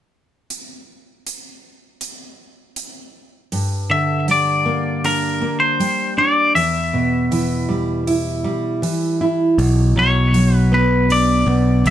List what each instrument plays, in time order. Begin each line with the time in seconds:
0.50 closed hi-hat
1.27 closed hi-hat
2.01 closed hi-hat
2.76 closed hi-hat
3.52 steel-string acoustic guitar G2, open hi-hat
3.90 steel-string acoustic guitar D3, clean electric guitar E5
4.28 steel-string acoustic guitar G3, clean electric guitar D5, open hi-hat
4.66 steel-string acoustic guitar A#3
5.04 steel-string acoustic guitar D4, clean electric guitar A#4, open hi-hat
5.42 steel-string acoustic guitar A#3
5.60 clean electric guitar C5
5.80 steel-string acoustic guitar G3, open hi-hat
6.17 steel-string acoustic guitar D4, clean electric guitar D5
6.55 steel-string acoustic guitar E2, clean electric guitar E5, open hi-hat
6.93 steel-string acoustic guitar B2
7.31 steel-string acoustic guitar E3, open hi-hat
7.69 steel-string acoustic guitar G3
8.07 steel-string acoustic guitar E4, open hi-hat
8.44 steel-string acoustic guitar G3
8.82 steel-string acoustic guitar E3, open hi-hat
9.21 steel-string acoustic guitar E4
9.58 picked electric bass B1, steel-string acoustic guitar B2, open hi-hat
9.96 picked electric bass B1, steel-string acoustic guitar F#3, clean electric guitar C#5
10.33 steel-string acoustic guitar F#3, open hi-hat
10.55 clean electric guitar B4
10.72 steel-string acoustic guitar B3, clean electric guitar B4
11.09 steel-string acoustic guitar D4, clean electric guitar D5, open hi-hat
11.47 picked electric bass B1, steel-string acoustic guitar B3
11.85 picked electric bass C#2, steel-string acoustic guitar F#3, clean electric guitar E5, open hi-hat